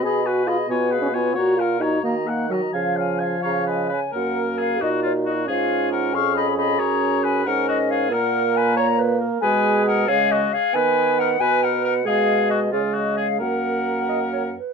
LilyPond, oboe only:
\new Staff \with { instrumentName = "Oboe" } { \time 6/8 \key fis \major \tempo 4. = 90 dis''8 b'8 dis''8 cis''8 b'8 cis''8 | cis''8 ais'8 cis''8 dis''8 fis''8 dis''8 | gis''8 eis''8 gis''8 cis''8 b'8 b'8 | ais'4 gis'8 fis'8 eis'8 fis'8 |
gis'4 ais'8 eis''8 dis''8 dis''8 | cis''4 b'8 ais'8 fis'8 gis'8 | ais'4 b'8 cis''8 r4 | b'4 ais'8 gis'8 fis'8 gis'8 |
b'4 ais'8 b'8 ais'8 ais'8 | gis'4 fis'8 eis'8 fis'8 gis'8 | ais'2~ ais'8 r8 | }